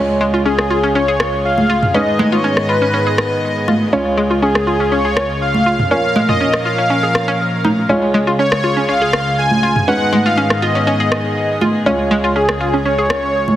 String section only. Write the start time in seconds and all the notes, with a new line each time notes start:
Already playing: C#2 C#3 G#3 F4 G#4
1.94 G#2 D#3 B3 D#5
3.93 C#2 C#3 G#3 F4 G#4
5.91 A#2 F3 C#4 A#4 F5
7.89 C#2 C#3 G#3 F4 G#4
9.88 G#2 D#3 B3 G#4 D#5
11.86 C#2 C#3 G#3 F4